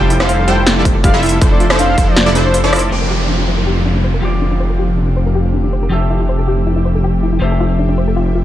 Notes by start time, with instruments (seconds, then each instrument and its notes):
Already playing: detuned saw bass F1, ambient pad F3 A3 G4, supersaw synth G3 E4 F4 A4 C5, soft synth lead G5
0.10 synth arpeggio sound E4, closed hi-hat
0.20 supersaw synth G3 E4 F4 A4 C5, synth arpeggio sound E4, soft synth lead F5, cross-stick, snare
0.29 synth arpeggio sound C5, closed hi-hat
0.39 synth arpeggio sound A4
0.48 supersaw synth G3 E4 F4 A4 C5, synth arpeggio sound G4, soft synth lead G5, closed hi-hat
0.66 synth arpeggio sound E4, snare, closed hi-hat
0.76 supersaw synth G3 E4 F4 A4 D5, synth arpeggio sound E4
0.85 synth arpeggio sound C5, kick, closed hi-hat
0.95 synth arpeggio sound A4
1.04 synth arpeggio sound G4, soft synth lead F5, kick, closed hi-hat
1.14 supersaw synth G3 E4 F4 A4 E5
1.23 synth arpeggio sound E4, closed hi-hat, open hi-hat
1.29 synth arpeggio sound E4, closed hi-hat
1.41 detuned saw bass F1, ambient pad C3 F3 E4, supersaw synth F3 D4 E4 A4 C5, synth arpeggio sound C5, kick, closed hi-hat
1.51 synth arpeggio sound A4, soft synth lead D5
1.60 synth arpeggio sound F4, closed hi-hat
1.70 supersaw synth F3 D4 E4 A4 C5, cross-stick, snare
1.79 synth arpeggio sound D4, soft synth lead F5, closed hi-hat
1.89 synth arpeggio sound D4
1.98 supersaw synth F3 D4 E4 A4 C5, synth arpeggio sound C5, kick, closed hi-hat
2.08 synth arpeggio sound A4, soft synth lead D5
2.17 synth arpeggio sound F4, snare, closed hi-hat
2.26 supersaw synth F3 D4 E4 A4 D5
2.35 supersaw synth F3 D4 E4 A4 C5, synth arpeggio sound D4, closed hi-hat
2.45 synth arpeggio sound D4, soft synth lead C5
2.54 synth arpeggio sound C5, closed hi-hat
2.64 supersaw synth F3 D4 E4 A4 D5, synth arpeggio sound A4, soft synth lead C5
2.73 synth arpeggio sound F4, cross-stick, closed hi-hat, open hi-hat
2.79 closed hi-hat
2.90 detuned saw bass F1, ambient pad D3, clean electric guitar F3 C4 G4 A#4 D5, synth arpeggio sound C5, downlifter
3.01 synth arpeggio sound A#4
3.10 synth arpeggio sound G4
3.29 synth arpeggio sound D4
3.39 synth arpeggio sound D4
3.48 synth arpeggio sound C5
3.58 synth arpeggio sound A#4
3.67 synth arpeggio sound G4
3.85 synth arpeggio sound D4
3.95 synth arpeggio sound D4
4.04 synth arpeggio sound C5
4.14 synth arpeggio sound A#4
4.21 detuned saw bass F1, clean electric guitar F3 F4 G4 C5, ambient pad C4 G4, synth arpeggio sound G4
4.25 clean electric guitar D5
4.42 synth arpeggio sound D4
4.51 synth arpeggio sound D4
4.60 synth arpeggio sound C5
4.70 synth arpeggio sound A#4
4.79 synth arpeggio sound G4
4.98 synth arpeggio sound D4
5.08 synth arpeggio sound D4
5.17 synth arpeggio sound C5
5.26 synth arpeggio sound A#4
5.35 synth arpeggio sound G4
5.54 synth arpeggio sound D4
5.64 synth arpeggio sound D4
5.73 synth arpeggio sound C5
5.83 synth arpeggio sound A#4
5.89 detuned saw bass F1, clean electric guitar F3 F4 G4 A4 E5, ambient pad A3, synth arpeggio sound G4
6.10 synth arpeggio sound E4
6.20 synth arpeggio sound E4
6.29 synth arpeggio sound C5
6.39 synth arpeggio sound A4
6.48 synth arpeggio sound G4
6.67 synth arpeggio sound E4
6.76 synth arpeggio sound E4
6.85 synth arpeggio sound C5
6.95 synth arpeggio sound A4
7.04 synth arpeggio sound G4
7.23 synth arpeggio sound E4
7.33 synth arpeggio sound E4
7.39 detuned saw bass F1, ambient pad C3 F3 E5, clean electric guitar F3 F4 A4 C5, synth arpeggio sound C5
7.43 clean electric guitar E5
7.51 synth arpeggio sound A4
7.60 synth arpeggio sound F4
7.79 synth arpeggio sound D4
7.89 synth arpeggio sound D4
7.98 synth arpeggio sound C5
8.08 synth arpeggio sound A4
8.16 synth arpeggio sound F4
8.35 synth arpeggio sound F4